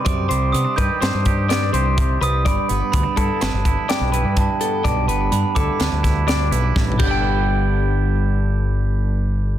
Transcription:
<<
  \new Staff \with { instrumentName = "Glockenspiel" } { \time 5/4 \key g \major \tempo 4 = 125 d'''4 ees'''8 g'''4 r2 ees'''8 | b''4 b''4 a''4 g''4 a''4 | a''4 b''8 d'''4 r2 g'''8~ | g'''1~ g'''4 | }
  \new Staff \with { instrumentName = "Clean electric guitar" } { \time 5/4 \key g \major d''8 c''4 b'8 c''4 d''8 c''4 b'8 | d''8 b'4 a'8 b'4 d''8 b'4 a'8 | d''8 b'4 a'8 b'4 d''8 b'4 <g' b' d'' g''>8~ | <g' b' d'' g''>1~ <g' b' d'' g''>4 | }
  \new Staff \with { instrumentName = "Clean electric guitar" } { \time 5/4 \key g \major << { g8 g8 b16 d'16 g'8 d'8 g'8 b16 d'16 g'4 g8~ | g8 b8 b16 d'16 e'8 d'8 e'8 d'8 e'4 b8 | r8 b8 d'8 e'8 d'8 e'8 d'8 e'4 <d b d' e'>8~ | <d b d' e'>1~ <d b d' e'>4 | } \\ { c4. ees4. g,4 c4 | g,4. d4. g,4 g,4 | g,4. d4. g,4 g,8 g,8~ | g,1~ g,4 | } >> }
  \new Staff \with { instrumentName = "Fingered electric bass" } { \clef bass \time 5/4 \key g \major fis,8 c,8 c16 r16 g,16 r16 g,16 g,4~ g,16 c,4 c,8 | g,,16 r16 g,,16 r16 d,16 r16 g,16 r16 g,,16 g,,8 r8 b,,8 g,8 r8. | b,,8 g,,8 g,16 r16 d,16 r16 d,16 d,4~ d,16 b,,8 a,,8 g,,8~ | g,,1~ g,,4 | }
  \new DrumStaff \with { instrumentName = "Drums" } \drummode { \time 5/4 <hh bd>8 hh8 hh8 <hh bd>8 <hh sn>8 <hh bd>8 <hh sn>8 hh8 <hh bd>8 hh8 | <hh bd>8 hh8 <hh bd>8 <hh bd>8 <hh sn>8 <hh bd>8 <hh sn>8 hh8 <hh bd>8 hh8 | <hh bd>8 hh8 hh8 <hh bd>8 <hh sn>8 <hh bd sn>8 <hh sn>8 hh8 \tuplet 3/2 { <bd sn>16 r16 toml16 <cymc bd>16 r16 r16 } | r4 r4 r4 r4 r4 | }
>>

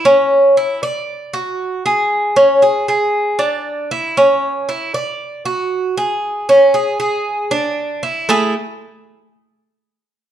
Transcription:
\new Staff \with { instrumentName = "Cuban tres" } { \time 4/4 \key a \major \tempo 4 = 116 cis'4 e'8 d''4 fis'4 gis'8~ | gis'8 cis'8 gis'8 gis'4 d'4 e'8 | cis'4 e'8 d''4 fis'4 gis'8~ | gis'8 cis'8 gis'8 gis'4 d'4 e'8 |
<a e' gis'>8 r2. r8 | }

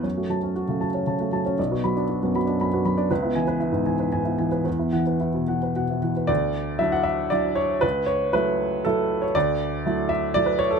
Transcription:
<<
  \new Staff \with { instrumentName = "Upright piano" } { \time 3/4 \key fis \minor \tempo 4 = 118 cis''16 fis'16 a''16 cis''16 fis'16 cis16 a''16 cis''16 a''16 fis'16 a''16 cis''16 | d''16 fis'16 b''16 d''16 fis'16 fis,16 b''16 d''16 b''16 fis'16 b''16 d''16 | b'16 e'16 gis''16 b'16 e'16 gis,16 gis''16 b'16 gis''16 e'16 gis''16 b'16 | b'16 e'16 fis''16 b'16 e'16 b,16 fis''16 b'16 fis''16 e'16 fis''16 b'16 |
d''4 e''16 fis''16 e''8 d''8 cis''8 | b'8 cis''8 b'4 a'8. cis''16 | d''4. e''8 d''16 b'16 cis''16 a'16 | }
  \new Staff \with { instrumentName = "Upright piano" } { \time 3/4 \key fis \minor fis,16 a16 fis16 cis'8 a16 fis16 cis'16 cis16 a16 fis16 cis'16 | b,,16 b16 fis16 d'8 b16 fis16 d'16 fis,16 b16 fis16 d'16 | cis,16 b16 e8 r16 b16 e8 gis,16 b16 e8 | e,16 b16 e8 r16 b16 e8 b,16 b16 e8 |
d,4 <fis d' e'>4 <fis d' e'>4 | cis,4 <fis a e'>4 <fis a e'>4 | d,4 <fis a e'>4 <fis a e'>4 | }
>>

